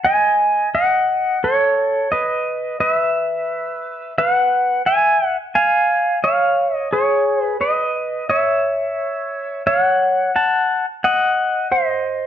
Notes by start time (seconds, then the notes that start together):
0.05 D#5 G#5
0.75 D#5 F#5
1.44 A4 C#5
2.12 B4 D#5
2.80 B4 D#5
2.91 E5
4.18 B4 F#5
4.86 E5 G#5
5.55 F5 G#5
6.24 C#5 F5
6.76 D#5
6.93 G#4 C#5
7.45 B4
7.61 B4 D#5
8.30 C#5 E5
9.67 C#5 F#5
10.36 F#5 A5
11.04 D#5 F#5
11.72 C5 D#5